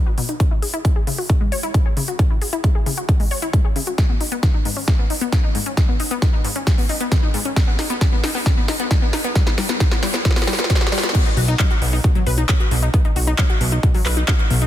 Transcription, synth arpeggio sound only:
0.06 0.11 F#4 medium
0.18 0.22 B2 loud
0.29 0.33 D#4 medium
0.40 0.44 C#4 medium
0.51 0.55 E4 medium
0.62 0.69 G#4 medium
0.73 0.76 E4 loud
0.85 0.91 G#3 medium
0.96 1.00 G#4 medium
1.07 1.11 C#3 loud
1.18 1.23 F#4 medium
1.30 1.32 C#3 loud
1.41 1.47 G#3 loud
1.52 1.56 C#5 loud
1.63 1.66 E4 loud
1.74 1.81 G#3 medium
1.86 1.90 G#4 medium
1.97 2.01 C#3 loud
2.08 2.12 F#4 medium
2.19 2.23 C#4 medium
2.30 2.35 E4 medium
2.42 2.48 G#4 medium
2.53 2.55 E4 loud
2.64 2.70 G#3 medium
2.75 2.79 G#4 medium
2.86 2.90 C#3 loud
2.97 3.02 F#4 medium
3.09 3.11 C#3 loud
3.20 3.26 G#3 loud
3.31 3.35 C#5 loud
3.42 3.45 E4 loud
3.53 3.60 G#3 medium
3.65 3.69 G#4 medium
3.76 3.80 C#3 loud
3.87 3.91 F#4 medium
3.98 4.02 G#3 medium
4.09 4.14 B3 medium
4.21 4.27 D#4 medium
4.32 4.34 B3 loud
4.43 4.49 D#3 medium
4.54 4.58 D#4 medium
4.65 4.70 G#2 medium
4.77 4.81 C#4 medium
4.88 4.92 G#3 medium
4.99 5.03 B3 medium
5.10 5.16 D#4 medium
5.21 5.24 B3 loud
5.33 5.39 D#3 medium
5.44 5.48 D#4 medium
5.55 5.59 G#2 loud
5.66 5.70 C#4 medium
5.77 5.82 G#3 medium
5.89 5.93 B3 medium
6.00 6.06 D#4 medium
6.11 6.13 B3 loud
6.22 6.28 D#3 medium
6.33 6.38 D#4 medium
6.45 6.49 G#2 medium
6.56 6.60 C#4 medium
6.67 6.71 G#3 medium
6.78 6.82 B3 medium
6.89 6.96 D#4 medium
7.01 7.03 B3 loud
7.12 7.18 D#3 medium
7.23 7.27 D#4 medium
7.34 7.38 G#2 loud
7.45 7.49 C#4 medium
7.56 7.61 G3 medium
7.68 7.72 B3 medium
7.79 7.85 D#4 medium
7.90 7.93 B3 loud
8.01 8.05 G3 medium
8.12 8.17 B3 medium
8.24 8.30 D#4 medium
8.35 8.37 B3 loud
8.46 8.50 G3 medium
8.57 8.61 B3 medium
8.69 8.75 D#4 medium
8.80 8.82 B3 loud
8.91 8.95 G3 medium
9.02 9.06 B3 medium
9.13 9.20 D#4 medium
9.24 9.27 B3 loud
9.36 9.40 G3 medium
9.47 9.51 B3 medium
9.58 9.62 G3 medium
9.69 9.73 B3 medium
9.80 9.85 G3 medium
9.92 9.96 B3 medium
10.03 10.07 G3 medium
10.14 10.18 B3 medium
10.25 10.29 G3 medium
10.36 10.41 B3 medium
10.48 10.52 G3 medium
10.59 10.63 B3 medium
10.70 10.74 G3 medium
10.81 10.85 B3 medium
10.92 10.96 G3 medium
11.04 11.08 B3 medium
11.15 11.19 B3 medium
11.26 11.30 D#4 medium
11.37 11.43 F#4 medium
11.48 11.51 D#4 loud
11.59 11.66 F#3 medium
11.71 11.75 F#4 medium
11.82 11.86 B2 loud
11.93 11.97 D#4 medium
12.04 12.07 B2 loud
12.15 12.22 F#3 loud
12.26 12.31 B4 loud
12.38 12.40 D#4 loud
12.49 12.55 F#3 medium
12.60 12.64 F#4 medium
12.71 12.76 B2 loud
12.83 12.87 D#4 medium
12.94 12.98 B3 medium
13.05 13.09 D#4 medium
13.16 13.22 F#4 medium
13.27 13.30 D#4 loud
13.39 13.45 F#3 medium
13.50 13.54 F#4 medium
13.61 13.65 B2 loud
13.72 13.76 D#4 medium
13.83 13.86 B2 loud
13.94 14.01 F#3 loud
14.06 14.10 B4 loud
14.17 14.19 D#4 loud
14.28 14.34 F#3 medium
14.39 14.43 F#4 medium
14.50 14.55 B2 loud
14.62 14.66 D#4 medium

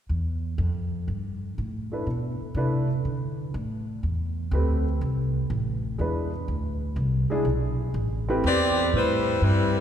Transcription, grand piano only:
1.92 2.05 A3 soft
1.92 2.06 D4 soft
1.92 2.06 E4 soft
1.92 2.06 B4 soft
2.56 2.86 A3 medium
2.56 2.86 D4 medium
2.56 2.87 E4 medium
2.56 2.87 B4 medium
4.53 4.83 A3 medium
4.53 4.83 C4 soft
4.53 4.83 G4 soft
4.53 4.83 B4 medium
5.98 6.29 G#3 soft
5.98 6.29 D4 soft
5.98 6.29 E4 soft
5.98 6.30 B4 medium
7.30 7.44 G#3 medium
7.30 7.44 D4 medium
7.30 7.45 E4 medium
7.30 7.45 G#4 medium
8.29 8.42 A3 medium
8.29 8.42 C4 medium
8.29 8.43 E4 medium
8.29 8.43 G4 medium
8.29 8.43 B4 medium

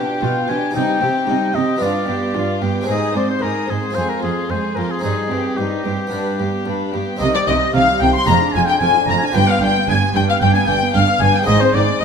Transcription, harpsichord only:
0.00 0.19 B2 soft
0.00 0.70 F4 soft
0.00 0.70 G4 soft
0.21 0.45 B2 soft
0.48 0.72 B2 soft
0.71 0.98 C3 soft
0.71 1.76 D#4 soft
0.71 1.77 G4 soft
1.01 1.25 C3 soft
1.27 1.52 C3 medium
1.54 1.78 C3 soft
1.76 2.05 G2 soft
1.76 2.83 B3 soft
1.76 2.83 D4 soft
1.76 2.84 F4 soft
2.07 2.32 G2 soft
2.35 2.59 G2 soft
2.62 2.86 G2 soft
2.81 3.89 G#3 soft
2.81 3.89 C4 soft
2.81 3.90 D#4 soft
2.87 3.12 G#2 soft
3.14 3.39 G#2 soft
3.40 3.65 G#2 soft
3.68 3.92 G#2 soft
3.91 4.98 C4 soft
3.91 4.99 F4 soft
3.95 4.20 F2 soft
4.23 4.47 F2 soft
4.50 4.74 F2 soft
4.77 5.01 F2 soft
4.99 6.06 C4 soft
4.99 6.07 D#4 soft
5.04 5.28 G2 soft
5.32 5.56 G2 soft
5.58 5.82 G2 soft
5.86 6.09 G2 soft
6.07 7.14 B3 soft
6.07 7.15 D4 soft
6.12 6.36 G2 soft
6.40 6.64 G2 soft
6.66 6.90 G2 soft
6.94 7.18 G2 soft
7.17 8.22 C4 medium
7.17 8.23 D#4 medium
7.17 8.24 G4 medium
7.21 7.45 C3 medium
7.48 7.72 C3 medium
7.74 7.98 C3 medium
8.01 8.25 C3 medium
8.23 9.29 D4 medium
8.23 9.30 F4 medium
8.23 9.31 G#4 medium
8.28 8.52 F2 medium
8.54 8.78 F2 medium
8.81 9.05 F2 medium
9.08 9.32 F2 medium
9.31 11.42 D4 medium
9.31 11.42 F4 medium
9.31 11.43 B4 medium
9.35 9.59 G2 medium
9.61 9.85 G2 medium
9.88 10.12 G2 medium
10.14 10.38 G2 medium
10.41 10.65 G2 medium
10.67 10.91 G2 soft
10.94 11.18 G2 medium
11.22 11.45 G2 medium
11.42 12.05 G#3 medium
11.42 12.05 C4 medium
11.42 12.05 D#4 medium
11.47 11.72 G#2 medium
11.47 12.05 C5 medium
11.75 11.98 G#2 soft
12.01 12.05 G#2 medium

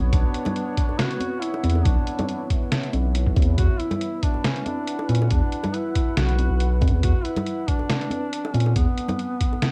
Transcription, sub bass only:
0.03 0.12 B1 medium
0.13 0.23 B1 medium
1.64 1.84 E2 loud
1.85 1.96 B1 loud
2.93 3.38 B1 medium
3.36 3.56 E2 medium
3.58 3.69 E2 loud
5.09 5.29 A#2 loud
5.31 5.41 E2 medium
6.17 6.49 B1 loud
6.50 6.83 B1 loud
6.82 6.92 G2 medium
6.93 7.02 E2 medium
7.03 7.14 E2 loud
8.54 8.74 A#2 loud
8.76 8.87 E2 loud

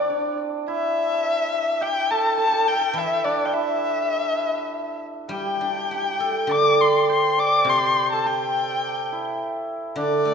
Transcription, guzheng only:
0.00 0.11 D3 medium
2.93 4.71 E3 medium
5.29 7.07 G3 medium
5.61 6.79 D4 soft
5.91 7.08 G4 soft
6.20 7.37 A4 soft
6.47 8.22 D3 medium
7.64 9.39 C3 medium
9.96 10.34 D3 medium
10.25 10.34 A3 soft

